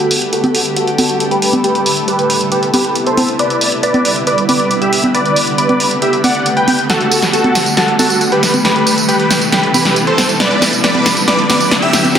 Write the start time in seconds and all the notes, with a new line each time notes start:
Already playing: D3 G3 A3 F#4 G4 A4, riser
0.11 open hi-hat
0.22 closed hi-hat
0.33 F#4 A4, closed hi-hat
0.44 closed hi-hat, high conga
0.55 open hi-hat
0.66 closed hi-hat
0.77 F#4 A4, closed hi-hat
0.87 closed hi-hat
0.98 F#4 A4, open hi-hat, high conga
1.09 closed hi-hat
1.20 closed hi-hat
1.31 G4 B4, closed hi-hat
1.42 open hi-hat
1.53 closed hi-hat, high conga
1.64 C3 B3 E4 G4 B4, closed hi-hat
1.75 closed hi-hat
1.86 open hi-hat
1.97 closed hi-hat
2.08 G4 B4, closed hi-hat
2.19 closed hi-hat
2.30 open hi-hat
2.41 closed hi-hat
2.52 G4 B4, closed hi-hat
2.63 closed hi-hat
2.74 G4 B4, open hi-hat, high conga
2.85 closed hi-hat
2.95 closed hi-hat
3.07 A4 C5, closed hi-hat
3.17 open hi-hat, high conga
3.28 closed hi-hat
3.39 D3 G3 B3 B4 D5, closed hi-hat
3.50 closed hi-hat
3.61 open hi-hat
3.72 closed hi-hat
3.83 B4 D5, closed hi-hat
3.94 closed hi-hat, high conga
4.05 open hi-hat
4.16 closed hi-hat
4.27 B4 D5, closed hi-hat
4.38 closed hi-hat
4.49 B4 D5, open hi-hat, high conga
4.60 closed hi-hat
4.71 closed hi-hat
4.81 G4 E5, closed hi-hat
4.93 open hi-hat
5.04 closed hi-hat, high conga
5.14 A3 G4 B4 D5, closed hi-hat
5.26 closed hi-hat
5.36 open hi-hat
5.47 closed hi-hat
5.58 B4 D5, closed hi-hat
5.69 closed hi-hat, high conga
5.80 open hi-hat
5.91 closed hi-hat
6.02 G4 E5, closed hi-hat
6.13 closed hi-hat
6.24 D5 F#5, open hi-hat, high conga
6.35 closed hi-hat
6.46 closed hi-hat
6.57 B4 G5, closed hi-hat
6.68 open hi-hat, high conga
6.79 closed hi-hat
6.89 D3 G3 F#4 A4, snare, closed hi-hat, tambourine
7.01 closed hi-hat
7.12 open hi-hat, tambourine
7.22 snare, closed hi-hat, tambourine
7.33 F#4 A4, closed hi-hat, tambourine
7.44 closed hi-hat, high conga
7.55 snare, open hi-hat, tambourine
7.66 closed hi-hat, tambourine
7.77 F#4 A4, snare, closed hi-hat, tambourine
7.88 closed hi-hat
7.99 F#4 A4, open hi-hat, tambourine, high conga
8.10 closed hi-hat, tambourine
8.21 closed hi-hat, tambourine
8.32 G4 B4, closed hi-hat
8.43 snare, open hi-hat, tambourine
8.54 closed hi-hat, tambourine, high conga
8.65 C3 B3 E4 G4 B4, snare, closed hi-hat, tambourine
8.76 closed hi-hat
8.87 open hi-hat, tambourine
8.98 closed hi-hat, tambourine
9.08 G4 B4, closed hi-hat, tambourine
9.20 closed hi-hat
9.31 snare, open hi-hat, tambourine
9.41 closed hi-hat, tambourine
9.52 G4 B4, snare, closed hi-hat
9.63 closed hi-hat
9.74 G4 B4, open hi-hat, tambourine, high conga
9.85 snare, closed hi-hat, tambourine
9.96 closed hi-hat, tambourine
10.07 A4 C5, closed hi-hat
10.18 snare, open hi-hat, tambourine, high conga
10.29 closed hi-hat, tambourine
10.40 D3 G3 B4 D5, snare, closed hi-hat
10.51 closed hi-hat
10.62 snare, open hi-hat, tambourine
10.73 closed hi-hat, tambourine
10.84 B4 D5, snare, closed hi-hat, tambourine
10.95 closed hi-hat, high conga
11.06 snare, open hi-hat, tambourine
11.17 closed hi-hat, tambourine
11.28 B4 D5, snare, closed hi-hat
11.39 closed hi-hat
11.50 B4 D5, snare, open hi-hat, tambourine, high conga
11.60 closed hi-hat, tambourine
11.71 snare, closed hi-hat, tambourine
11.82 G4 E5, closed hi-hat
11.93 snare, open hi-hat, tambourine
12.04 closed hi-hat, tambourine, high conga
12.15 A3 G4 B4, snare, closed hi-hat, tambourine